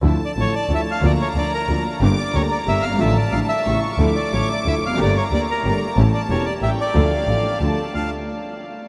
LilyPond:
<<
  \new Staff \with { instrumentName = "Violin section" } { \time 3/4 \key d \minor \tempo 4 = 182 a''2. | bes''2. | d'''4 bes''2 | a''2 cis'''4 |
d'''2. | bes''2 bes''4 | a''2 g''4 | f''2 a''4 |
a''8 r2 r8 | }
  \new Staff \with { instrumentName = "Bandoneon" } { \time 3/4 \key d \minor r8 d''8 cis''8 d''8 e''8 f''8 | d''8 cis''8 d''8 bes'4 r8 | r8 d''8 cis''8 d''8 e''8 f''8 | e''8 d''8 f''8 e''4 r8 |
r8 d''8 cis''8 d''8 e''8 f''8 | d''8 cis''8 d''8 bes'4 r8 | r8 d''8 cis''8 d''8 e''8 d''8~ | d''2 r4 |
f''8 r2 r8 | }
  \new Staff \with { instrumentName = "String section" } { \time 3/4 \key d \minor <f d' e'>8 r8 <f d' e'>8 r8 <f d' e'>8 r8 | <bes d' f'>8 r8 <bes d' f'>8 r8 <bes d' f'>8 r8 | <bes d' g'>8 r8 <bes d' g'>8 r8 <bes d' g'>8 r8 | <a d' f'>8 r8 <a d' f'>8 r8 <a cis' g'>8 r8 |
<f d' e'>8 r8 <f d' e'>8 r8 <f d' e'>8 r8 | <a bes g'>8 r8 <a bes g'>8 r8 <a bes g'>8 r8 | <a cis' g'>8 r8 <a cis' g'>8 r8 <a cis' g'>8 r8 | <a d' f'>8 r8 <a d' f'>8 r8 <a d' f'>8 r8 |
<a d' f'>8 r2 r8 | }
  \new Staff \with { instrumentName = "Upright piano" } { \clef bass \time 3/4 \key d \minor <d, d f a e'>8 r8 <a,, a, d f a e'>8 r8 <d, d f a e'>8 r8 | <d, d f bes f'>8 r8 <d, d f bes f'>8 r8 <d, d f bes f'>8 r8 | <g,, g, d g bes g'>8 r8 <d, d g bes g'>8 r8 <g,, g, d g bes g'>8 r32 fis,,32 g,,32 gis,,32 | <a,, a, d f a f'>8 r8 <a,, a, d f a f'>8 r8 <a,, a, cis g a e'>8 r8 |
<d, d f a e'>8 r8 <a,, a, d f a e'>8 r8 <d, d f a e'>8 r32 e,32 f,32 fis,32 | <g,, g, d a bes g'>8 r8 <d, d a bes g'>8 r8 <g,, g, d a bes g'>8 r8 | <a,, a, e a cis' g'>8 r8 <e,, e, e a cis' g'>8 r8 <a,, a, e a cis' g'>8 r8 | <d, d f a d' a'>8 r8 <a,, a, f a d' a'>8 r8 <d, d f a d' a'>8 r8 |
<d, d' f' a'>8 r2 r8 | }
  \new Staff \with { instrumentName = "Double bass" } { \clef bass \time 3/4 \key d \minor d,8 r8 a,,8 r8 d,8 r8 | d,8 r8 d,8 r8 d,8 r8 | g,,8 r8 d,8 r8 g,,8 g,,8 | a,,8 r8 a,,8 r8 a,,8 r8 |
d,8 r8 a,,8 r8 d,8 f,,8 | g,,8 r8 d,8 r8 g,,8 r8 | a,,8 r8 e,,8 r8 a,,8 r8 | d,8 r8 a,,8 r8 d,8 r8 |
d,8 r2 r8 | }
>>